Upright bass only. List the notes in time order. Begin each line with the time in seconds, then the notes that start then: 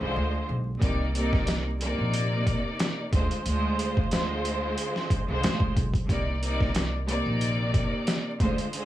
0.01 C2
0.16 D2
0.49 B1
0.82 C2
1.99 A#1
3.13 D2
3.46 D2
5.28 C2
5.44 D2
5.77 B1
6.09 C2
7.26 A#1
8.40 D2